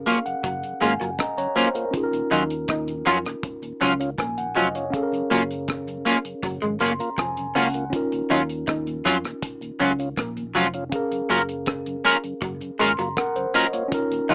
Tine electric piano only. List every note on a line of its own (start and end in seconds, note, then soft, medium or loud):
0.00 1.89 C#4 medium
0.00 1.91 G#4 medium
0.00 1.17 A#4 medium
0.00 0.07 F5 medium
0.07 0.25 F5 medium
0.26 0.43 F#5 medium
0.44 0.79 F#5 medium
0.81 1.16 G#5 medium
1.19 1.37 D#5 medium
1.19 1.37 A#5 medium
1.38 1.56 C#5 medium
1.38 1.90 A#5 medium
1.56 1.74 C5 medium
1.76 2.02 A#4 medium
1.91 4.88 C#4 medium
1.91 4.90 D#4 medium
1.91 4.89 F4 medium
1.97 2.02 G#4 medium
2.03 4.94 A#4 medium
4.19 4.37 G#5 medium
4.38 4.55 F#5 medium
4.56 4.74 D#5 medium
4.76 5.11 C#5 medium
4.90 7.87 C#4 medium
4.90 7.89 G#4 medium
4.90 7.88 F5 medium
4.96 5.01 A4 medium
5.03 7.94 A#4 medium
6.81 6.98 C6 medium
7.00 7.17 A#5 medium
7.18 7.53 G#5 medium
7.56 7.91 F#5 medium
7.90 10.87 C#4 medium
7.90 10.88 F4 medium
7.94 10.89 D#4 medium
7.94 10.90 A#4 medium
10.90 13.87 C#4 medium
10.90 13.88 F5 medium
10.94 13.89 G#4 medium
10.94 13.15 A#4 medium
12.79 12.97 C6 medium
12.99 13.16 A#5 medium
13.17 13.35 A#4 medium
13.17 13.52 F#5 medium
13.36 13.72 C5 medium
13.54 13.89 D#5 medium
13.73 14.09 C#5 medium
13.88 14.35 C#4 medium
13.88 14.35 F4 medium
13.92 14.35 D#4 medium
13.92 14.35 A#4 medium